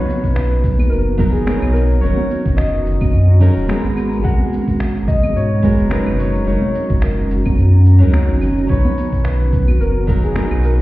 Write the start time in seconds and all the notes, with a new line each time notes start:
Already playing: D#3 F#3 B3 D#4 F#4 B4 C#5 A#5
0.09 shaker
0.24 B1, kick, shaker
0.35 B4, finger snap, shaker
0.64 B1, kick, shaker
0.79 high conga, claves, shaker
0.90 F#1 A#4, shaker
1.18 F#3 B3 D#4 A#4, kick, shaker
1.32 F#1 G#4, shaker
1.46 F#3 B3 D#4 A#4, finger snap, high conga, shaker
1.62 B1, claves
1.73 A#4, shaker
1.91 shaker
2.00 F#1 F#3 C#4 D#4 C#5, shaker
2.05 A#4
2.17 high conga
2.31 shaker
2.46 F#1, kick, shaker
2.57 D#5, finger snap, shaker
2.86 F#1, shaker
3.01 kick, high conga, claves, shaker
3.14 F#2, shaker
3.40 F#3 C#4 D#4 A#4, shaker
3.56 D#1, shaker
3.68 G#3 B3 F#4 A#4, finger snap, high conga, shaker
3.84 G#1
3.97 B2 G#3, claves, shaker
4.13 shaker
4.22 G#1 G#3 B3 F#4 F#5, kick, shaker
4.26 A#4
4.39 high conga
4.53 shaker
4.68 G#1, kick, shaker
4.80 finger snap, shaker
5.08 G#1 D#5, kick, shaker
5.23 high conga, claves, shaker
5.30 D#5
5.36 G#2 C#5, shaker
5.62 G#3 B3 F#4 A#4, kick, shaker
5.79 F#1, shaker
5.90 F#3 C#4 D#4 A#4 B4, finger snap, high conga, shaker
6.06 F#1, claves
6.18 D#3 C#4 C#5, shaker
6.35 shaker
6.44 F#1 F#3 C#4 D#4 C#5, shaker
6.49 A#4
6.62 high conga
6.75 shaker
6.90 F#1, kick, shaker
7.02 A#4, finger snap, shaker
7.30 F#1, shaker
7.45 kick, high conga, claves, shaker
7.58 F#2, shaker
7.86 shaker
7.99 C#2 F#3 C#4 D#4, shaker
8.03 A#4
8.13 finger snap, high conga, shaker
8.28 F#1
8.41 claves, shaker
8.57 shaker
8.67 B1 F#3 B3 D#4 F#4 C#5, kick, shaker
8.71 B4
8.85 high conga
8.98 shaker
9.12 B1, kick, shaker
9.24 B4, finger snap, shaker
9.53 B1, kick, shaker
9.68 high conga, claves, shaker
9.80 F#1 A#4, shaker
10.07 F#3 B3 D#4 A#4, kick, shaker
10.23 F#1 G#4, shaker
10.35 F#3 B3 D#4 A#4, finger snap, high conga, shaker
10.51 B1, claves
10.64 A#4, shaker